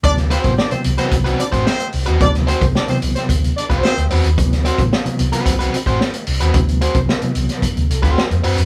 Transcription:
<<
  \new Staff \with { instrumentName = "Horn section" } { \time 4/4 \key d \mixolydian \tempo 4 = 111 <d' d''>16 r16 <c' c''>16 r16 <d' d''>16 <c' c''>16 r16 <c' c''>16 r8 <d' d''>16 r16 <c' c''>8 r8 | <d' d''>16 r16 <c' c''>16 r16 <d' d''>16 <c' c''>16 r16 <c' c''>16 r8 <d' d''>16 r16 <c' c''>8 r8 | r1 | r1 | }
  \new Staff \with { instrumentName = "Overdriven electric guitar" } { \time 4/4 \key d \mixolydian r8 <c' fis' c''>16 r4 <c' fis' b'>16 r16 <c' fis' b'>16 r16 <c' fis' c''>16 r8. <c' fis' b'>16 | r8 <c' fis' c''>16 r2 <c' fis' c''>16 r8 <c' fis' b'>16 r16 | r8 <c' fis' c''>16 r4 <c' fis' b'>16 r16 <c' fis' b'>16 r16 <c' fis' c''>16 r8. <c' fis' b'>16 | r8 <c' fis' c''>16 r2 <c' fis' c''>16 r8 <c' fis' b'>16 r16 | }
  \new Staff \with { instrumentName = "Reed electric piano" } { \clef bass \time 4/4 \key d \mixolydian <c e fis b>8 r16 <c e fis b>16 r16 <c e fis b>4~ <c e fis b>16 r4. | <c e fis b>8 r16 <c e fis b>16 r16 <c e fis b>4~ <c e fis b>16 r4. | <c e fis b>8 r16 <c e fis b>16 r16 <c e fis b>4~ <c e fis b>16 r4. | <c e fis b>8 r16 <c e fis b>16 r16 <c e fis b>4~ <c e fis b>16 a'8 c''4 | }
  \new Staff \with { instrumentName = "Fingered electric bass" } { \clef bass \time 4/4 \key d \mixolydian d,8. a,,16 r8 c,16 r16 c,8 r16 a,,16 r8 c,16 ees,16 | d,8. c,16 r8 c,16 r16 d,8 r16 c,16 r16 d,16 e,16 ees,16 | d,8. a,,16 r8 c,16 r16 c,8 r16 a,,16 r8 c,16 ees,16 | d,8. c,16 r8 c,16 r8 d,16 c,16 d,16 r16 f,16 fis,16 f,16 | }
  \new DrumStaff \with { instrumentName = "Drums" } \drummode { \time 4/4 <hh bd>16 <hh sn>16 hh16 <hh bd>16 sn16 hh16 hh16 <hh sn>16 <hh bd>16 hh16 hh16 <hh bd>16 sn16 hh16 hho16 hh16 | <hh bd>16 <hh sn>16 hh16 <hh bd>16 sn16 hh16 hh16 <hh sn>16 <hh bd>16 hh16 hh16 <hh bd>16 sn16 hh16 hho16 hh16 | <hh bd>16 <hh sn>16 hh16 <hh bd>16 sn16 hh16 hh16 hh16 <hh bd>16 hh16 hh16 <hh bd>16 sn16 hh16 hho16 hh16 | <hh bd>16 hh16 hh16 <hh bd>16 sn16 hh16 hh16 <hh sn>16 <hh bd>16 hh16 hh16 <hh bd>16 sn16 hh16 hho16 hh16 | }
>>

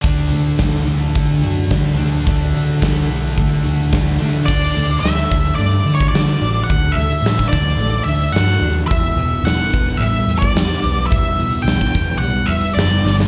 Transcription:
<<
  \new Staff \with { instrumentName = "Lead electric guitar" } { \time 4/4 \key d \mixolydian \tempo 4 = 108 r1 | r1 | d''4 e''4 d''8. cis''16 d''4 | fis''8 e''4 d''4 e''8 fis''8. r16 |
e''4 fis''4 e''8. d''4~ d''16 | e''4 g''4 fis''8 e''8 d''8. r16 | }
  \new Staff \with { instrumentName = "Clean electric guitar" } { \time 4/4 \key d \mixolydian d8 a8 a8 d8 a8 fis'8 d'8 a8 | d8 a8 a8 d8 a8 fis'8 d'8 a8 | d8 a8 d8 d'8 a8 d'8 fis'8 d'8 | d8 a8 d8 d'8 a8 d'8 fis'8 d'8 |
e,8 b,8 e8 b8 g8 b8 g'8 b8 | e,8 b,8 e8 b8 g8 b8 g'8 g,8 | }
  \new Staff \with { instrumentName = "Distorted electric guitar" } { \time 4/4 \key d \mixolydian <d a d'>2.~ <d a d'>8 <d a d'>8 | <d a d'>2.~ <d a d'>8 <d a d'>8 | r1 | r1 |
r1 | r1 | }
  \new Staff \with { instrumentName = "Picked electric bass" } { \clef bass \time 4/4 \key d \mixolydian d,8 d,8 d,8 d,8 d8 fis,8 d,8 d,8 | d,8 d,8 d,8 b,,8 d8 d,8 d,8 d8 | d,8 d,8 d,8 d,8 g,8 d8 d8 a,,8 | d,8 d,8 a,8 d,8 a,,8 d,8 g,8 dis,8 |
e,,8 e,,8 e,,8 e,,8 a,,8 e,8 e,8 b,,8 | e,,8 e,,8 b,,8 e,,8 b,,8 e,,8 fis,,8 g,,8 | }
  \new DrumStaff \with { instrumentName = "Drums" } \drummode { \time 4/4 <hh bd>8 hh8 <hh bd sn>8 hh8 <hh bd>8 hh8 <hh bd sn>8 hh8 | <hh bd>8 hh8 <hh bd sn>8 hh8 <hh bd>8 hh8 <hh bd sn>8 hh8 | <cymc bd>8 hh8 <hh sn>8 <hh bd>16 hh16 hh8 hh16 bd16 <hh sn>8 hh8 | <hh bd>8 hh16 hh16 <hh sn>16 bd16 <hh bd>8 hh8 hh16 hh16 <hh sn>8 hh8 |
<hh bd>8 hh8 <hh sn>8 <hh bd>16 hh16 hh8 hh16 bd16 <hh sn>8 hh8 | <hh bd>8 hh16 hh16 <hh sn>16 bd16 <hh bd>8 hh8 hh16 hh16 <hh sn>8 sn16 sn16 | }
>>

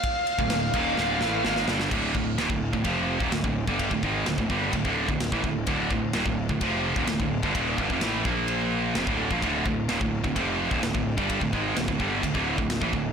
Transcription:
<<
  \new Staff \with { instrumentName = "Lead electric guitar" } { \time 4/4 \key d \phrygian \tempo 4 = 128 f''2.~ f''8 r8 | \key d \minor r1 | r1 | r1 |
r1 | r1 | r1 | }
  \new Staff \with { instrumentName = "Distorted electric guitar" } { \clef bass \time 4/4 \key d \phrygian r8. <d, a,>16 <d, a,>8 <ees, bes, ees>8 <d, a, d>8 <a, e a>8 <gis, ees gis>8 <g, d g>8 | \key d \minor <d, a, d>8 <d, a,>8 <ees, bes,>16 <d, a,>8 <d, a,>16 <f, c f>8. <ees, bes,>16 <d, a,>16 <d, a,>8 <g, d g>16~ | <g, d g>16 <d, a,>16 <gis, ees gis>8 <d, a,>16 <d, a,>16 <g, d g>8 <d, a,>16 <d, a, d>8 <d, a,>8 <a, e>16 <d, a,>8 | <d, a, d>8 <d, a,>8 <ees, bes,>16 <d, a,>8 <d, a,>16 <f, c f>8. <ees, bes,>16 <d, a,>16 <d, a,>8 <g, d>16 |
<ees, bes, ees>8 <g, d>16 <f, c>16 <a, e a>8 <bes, f bes>4. <f, c>16 <d, a, d>8 <bes, f>16 | <d, a, d>8 <d, a,>8 <ees, bes,>16 <d, a,>8 <d, a,>16 <f, c f>8. <ees, bes,>16 <d, a,>16 <d, a,>8 <g, d g>16~ | <g, d g>16 <d, a,>16 <gis, ees gis>8 <d, a,>16 <d, a,>16 <g, d g>8 <d, a,>16 <d, a, d>8 <d, a,>8 <a, e>16 <d, a,>8 | }
  \new Staff \with { instrumentName = "Distorted electric guitar" } { \clef bass \time 4/4 \key d \phrygian r8. <d, a,>16 <d, a,>8 <ees, bes, ees>8 <d, a, d>8 <a, e a>8 <gis, ees gis>8 <g, d g>8 | \key d \minor <d, a, d>8 <d, a,>8 <ees, bes,>16 <d, a,>8 <d, a,>16 <f, c f>8. <ees, bes,>16 <d, a,>16 <d, a,>8 <g, d g>16~ | <g, d g>16 <d, a,>16 <gis, ees gis>8 <d, a,>16 <d, a,>16 <g, d g>8 <d, a,>16 <d, a, d>8 <d, a,>8 <a, e>16 <d, a,>8 | <d, a, d>8 <d, a,>8 <ees, bes,>16 <d, a,>8 <d, a,>16 <f, c f>8. <ees, bes,>16 <d, a,>16 <d, a,>8 <g, d>16 |
<ees, bes, ees>8 <g, d>16 <f, c>16 <a, e a>8 <bes, f bes>4. <f, c>16 <d, a, d>8 <bes, f>16 | <d, a, d>8 <d, a,>8 <ees, bes,>16 <d, a,>8 <d, a,>16 <f, c f>8. <ees, bes,>16 <d, a,>16 <d, a,>8 <g, d g>16~ | <g, d g>16 <d, a,>16 <gis, ees gis>8 <d, a,>16 <d, a,>16 <g, d g>8 <d, a,>16 <d, a, d>8 <d, a,>8 <a, e>16 <d, a,>8 | }
  \new Staff \with { instrumentName = "Picked electric bass" } { \clef bass \time 4/4 \key d \phrygian r8. d,,16 d,,8 ees,,8 d,,8 a,,8 gis,,8 g,,8 | \key d \minor d,,8 d,,8 ees,,16 d,,8 d,,16 f,,8. ees,,16 d,,16 d,,8 g,,16~ | g,,16 d,,16 gis,,8 d,,16 d,,16 g,,8 d,,16 d,,8 d,,8 a,,16 d,,8 | d,,8 d,,8 ees,,16 d,,8 d,,16 f,,8. ees,,16 d,,16 d,,8 g,,16 |
ees,,8 g,,16 f,,16 a,,8 bes,,4. f,,16 d,,8 bes,,16 | d,,8 d,,8 ees,,16 d,,8 d,,16 f,,8. ees,,16 d,,16 d,,8 g,,16~ | g,,16 d,,16 gis,,8 d,,16 d,,16 g,,8 d,,16 d,,8 d,,8 a,,16 d,,8 | }
  \new DrumStaff \with { instrumentName = "Drums" } \drummode { \time 4/4 <bd cymr>8 cymr16 bd16 <cymr sn>8 <bd cymr>8 sn8 sn8 sn16 sn16 sn16 sn16 | <cymc bd>8 bd8 <rb sn>16 bd8 bd16 <bd rb>8. bd16 <rb sn>16 bd8 bd16 | <bd rb>16 bd16 bd8 <rb sn>16 bd16 bd8 <bd rb>16 bd8 bd16 <rb sn>16 bd16 bd8 | <bd rb>8 bd8 <rb sn>16 bd8 bd16 <bd rb>8. bd16 <rb sn>16 bd8 bd16 |
<bd rb>8 bd16 bd16 <rb sn>8 bd8 rb4 <rb sn>16 bd8 bd16 | <bd rb>8 bd8 <rb sn>16 bd8 bd16 <bd rb>8. bd16 <rb sn>16 bd8 bd16 | <bd rb>16 bd16 bd8 <rb sn>16 bd16 bd8 <bd rb>16 bd8 bd16 <rb sn>16 bd16 bd8 | }
>>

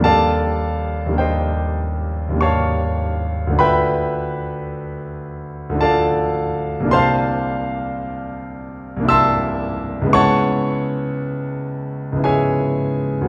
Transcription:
\new Staff \with { instrumentName = "Grand piano" } { \time 3/4 \key c \major \tempo 4 = 54 <ees, g bes d' g' a' d'' f'' a''>4 <ees, g bes d' g' c'' ees'' g''>4 <ees, g bes d' g' cis'' f'' a'' cis'''>4 | <d, a d' f' b' e'' g'' b''>2 <d, a d' f' a' d'' f'' a''>4 | <c, bes d' e' g' c'' f'' a'' c'''>2 <c, bes d' e' g' e'' a'' c''' e'''>4 | \key cis \phrygian <cis, gis b e' cis'' fis'' a'' cis'''>2 <cis, gis b e' gis' cis'' e'' gis''>4 | }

